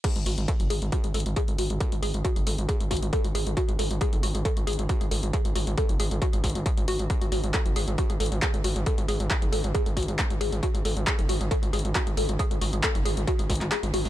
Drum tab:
CC |x-------------------------------|--------------------------------|--------------------------------|--------------------------------|
HH |x-x-o-x-x-x-o-x-x-x-oxx-x-x-o-x-|x-x-o-x-x-x-o-x-x-x-oxx-x-x-o-x-|x-x-o-x-x-x-o-x-x-x-oxx-x-x-o-x-|x-x-o-x-x-x-o-x-x-x-oxx-x-x-o-x-|
CP |--------------------------------|--------------------------------|--------------------------------|--------------------------------|
BD |o-------o-------o-------o-------|o-------o-------o---o---o-------|o-------o-------o-------o-------|o-------o-------o---o---o-------|

CC |--------------------------------|--------------------------------|--------------------------------|--------------------------------|
HH |x-x-o-x-x-x-o-x-x-x-oxx-x-x-o-x-|x-x-o-x-x-x-o-x-x-x-oxx-x-x-o-x-|x-x-o-x-x-x-o-x-x-x-oxx-x-x-o-x-|x-x-o-x-x-x-o-x-x-x-oxx-x-x-o-o-|
CP |--------x---------------x-------|--------x---------------x-------|--------x---------------x-------|--------x-------------x-x-------|
BD |o-------o-------o-------o-------|o-------o-------o---o---o-------|o-------o-------o-------o-------|o-------o-------o---o-----------|